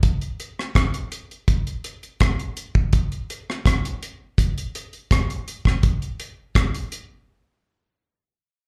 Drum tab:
HH |xxx-xxxxxxxxxxx-|xxx-xxx-xxxxxxx-|xxx-xxx---------|
SD |---rr-------r---|---rr-------r--r|----r-----------|
BD |o---o---o---o--o|o---o---o---o--o|o---o-----------|